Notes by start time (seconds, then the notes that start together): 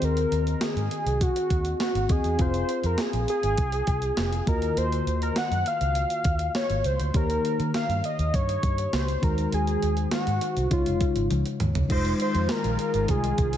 Already playing: D#3 C4 F#4 G#4 D#5
0.02 D#2 A#4, closed hi-hat
0.17 closed hi-hat
0.32 D#2, closed hi-hat
0.47 closed hi-hat
0.61 G#4, snare, closed hi-hat
0.76 G#2, closed hi-hat
0.91 closed hi-hat
1.06 C2, closed hi-hat
1.21 F#4, kick, closed hi-hat
1.36 closed hi-hat
1.50 D#2, kick, closed hi-hat
1.65 closed hi-hat
1.80 F#4, snare, closed hi-hat
1.95 G#1, closed hi-hat
2.09 D#2 C4 F#4 G#4 D#5, kick, closed hi-hat
2.24 E2, closed hi-hat
2.38 F1 C4 F4 G#4 C5 F5, kick, closed hi-hat
2.54 closed hi-hat
2.69 closed hi-hat
2.84 F2 A#4, closed hi-hat
2.98 G#4, snare, closed hi-hat
3.13 A#1, closed hi-hat
3.28 G#4, closed hi-hat
3.43 G#1, closed hi-hat
3.58 C2, kick, closed hi-hat
3.72 closed hi-hat
3.87 C2, kick, closed hi-hat
4.02 closed hi-hat
4.17 F1, snare, closed hi-hat
4.33 closed hi-hat
4.46 D#2 D#3 A#3 F4 F#4 A#4 D#5, kick, closed hi-hat
4.62 closed hi-hat
4.77 D#2 C5, closed hi-hat
4.92 closed hi-hat
5.07 D#2, closed hi-hat
5.22 A#4, closed hi-hat
5.36 F#5, snare, closed hi-hat
5.51 F#2, closed hi-hat
5.66 F5, closed hi-hat
5.81 C#2, closed hi-hat
5.95 closed hi-hat
6.10 closed hi-hat
6.24 D#2, kick, closed hi-hat
6.39 closed hi-hat
6.55 C#5, snare, closed hi-hat
6.70 G#1, closed hi-hat
6.84 C#2 C5, closed hi-hat
6.99 D2, closed hi-hat
7.14 D#2 D#3 A#3 D#4 G4 A#4 C#5, kick, closed hi-hat
7.30 closed hi-hat
7.45 closed hi-hat
7.59 D#3, closed hi-hat
7.74 F5, snare, closed hi-hat
7.89 G2, closed hi-hat
8.04 D#5, closed hi-hat
8.19 D#2, closed hi-hat
8.34 G2 C#5, kick, closed hi-hat
8.49 closed hi-hat
8.63 G2, kick, closed hi-hat
8.78 closed hi-hat
8.93 C#2 C5, snare, closed hi-hat
9.08 closed hi-hat
9.22 D#2 D#3 G#3 D#4 F#4 A#4 C5, kick, closed hi-hat
9.38 closed hi-hat
9.52 D#2 G#4, closed hi-hat
9.67 closed hi-hat
9.83 D#2, closed hi-hat
9.97 closed hi-hat
10.11 F#4, snare, closed hi-hat
10.27 G#2, closed hi-hat
10.41 closed hi-hat
10.57 C2, closed hi-hat
10.70 C#2 C#3 G#3 D#4 F4 C#5, kick, closed hi-hat
10.86 F1, closed hi-hat
11.01 kick, closed hi-hat
11.16 G#1, closed hi-hat
11.30 C#2, closed hi-hat, high tom
11.46 closed hi-hat
11.60 D#2, closed hi-hat, mid tom
11.75 C#2, closed hi-hat, floor tom
11.89 F1 D#3 G#3 D#4 F4 C5, kick, closed hi-hat, crash
12.05 closed hi-hat
12.20 C5, closed hi-hat
12.35 F2, closed hi-hat
12.49 A#4, snare, closed hi-hat
12.64 A#1, closed hi-hat
12.79 closed hi-hat
12.94 G#1, closed hi-hat
13.08 C2 G#4, kick, closed hi-hat
13.24 closed hi-hat
13.38 C2, kick, closed hi-hat
13.53 closed hi-hat